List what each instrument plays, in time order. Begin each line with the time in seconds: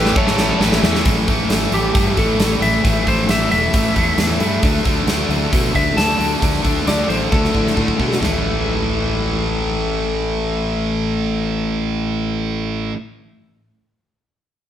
Already playing: fingered electric bass A1, overdriven electric guitar A2 E3 A3, distorted electric guitar C#4 E4, lead electric guitar G4 B4
0.05 snare
0.15 fingered electric bass A1, overdriven electric guitar A2 E3 A3, lead electric guitar A4 C#5, kick
0.27 snare
0.38 snare
0.59 fingered electric bass A1, overdriven electric guitar A2 E3 A3, distorted electric guitar C#4, snare
0.63 distorted electric guitar E4
0.72 snare
0.81 fingered electric bass E2, overdriven electric guitar A2 E3 A3, snare
0.95 snare
1.03 fingered electric bass A1, overdriven electric guitar A2 E3 A3, kick, open hi-hat
1.27 fingered electric bass A1, overdriven electric guitar A2 E3 A3, kick, open hi-hat
1.49 fingered electric bass A1, overdriven electric guitar A2 E3 A3, snare, open hi-hat
1.72 fingered electric bass A1, overdriven electric guitar A2 E3 A3, lead electric guitar G4, open hi-hat
1.94 fingered electric bass G2, overdriven electric guitar A2 E3 A3, kick, open hi-hat
2.16 fingered electric bass A1, overdriven electric guitar A2 E3 A3, lead electric guitar A4, kick, open hi-hat
2.38 fingered electric bass A1, overdriven electric guitar A2 E3 A3, snare, open hi-hat
2.60 fingered electric bass A1, overdriven electric guitar A2 E3 A3, lead electric guitar E5, open hi-hat
2.83 fingered electric bass A1, overdriven electric guitar A2 E3 A3, kick, open hi-hat
3.05 fingered electric bass A1, overdriven electric guitar A2 E3 A3, lead electric guitar C5, kick, open hi-hat
3.27 fingered electric bass A1, overdriven electric guitar A2 E3 A3, lead electric guitar E5, snare, open hi-hat
3.50 fingered electric bass E1, overdriven electric guitar A2 E3 A3, lead electric guitar E5, open hi-hat
3.71 fingered electric bass A1, overdriven electric guitar A2 E3 A3, kick, open hi-hat
3.95 fingered electric bass E2, overdriven electric guitar A2 E3 A3, kick, open hi-hat
4.17 fingered electric bass E2, overdriven electric guitar A2 E3 A3, snare, open hi-hat
4.40 fingered electric bass G2, overdriven electric guitar A2 E3 A3, open hi-hat
4.62 fingered electric bass D2, overdriven electric guitar D3 A3 D4, kick, open hi-hat
4.85 fingered electric bass D2, overdriven electric guitar D3 A3 D4, kick, open hi-hat
5.06 fingered electric bass D2, overdriven electric guitar D3 A3 D4, snare, open hi-hat
5.29 fingered electric bass D2, overdriven electric guitar D3 A3 D4, open hi-hat
5.52 fingered electric bass B2, overdriven electric guitar D3 A3 D4, kick, open hi-hat
5.73 fingered electric bass D2, overdriven electric guitar D3 A3 D4, lead electric guitar E5, kick, open hi-hat
5.97 fingered electric bass D2, overdriven electric guitar D3 A3 D4, lead electric guitar A5, snare, open hi-hat
6.18 fingered electric bass D2, overdriven electric guitar D3 A3 D4, open hi-hat
6.39 fingered electric bass D2, overdriven electric guitar D3 A3 D4, kick, open hi-hat
6.63 fingered electric bass D2, overdriven electric guitar D3 A3 D4, kick, open hi-hat
6.85 fingered electric bass D2, overdriven electric guitar D3 A3 D4, lead electric guitar D5, snare, open hi-hat
7.08 fingered electric bass A1, overdriven electric guitar D3 A3 D4, lead electric guitar C5, open hi-hat
7.31 fingered electric bass D2, overdriven electric guitar D3 A3 D4, lead electric guitar A4, kick, high tom
7.45 snare
7.52 fingered electric bass A2, overdriven electric guitar D3 A3 D4, kick
7.67 snare
7.75 fingered electric bass A2, overdriven electric guitar D3 A3 D4, kick
7.88 kick
7.98 fingered electric bass B2, overdriven electric guitar D3 A3 D4, kick
8.12 snare
8.20 fingered electric bass A1, overdriven electric guitar A2 E3, snare, floor tom
8.24 overdriven electric guitar A3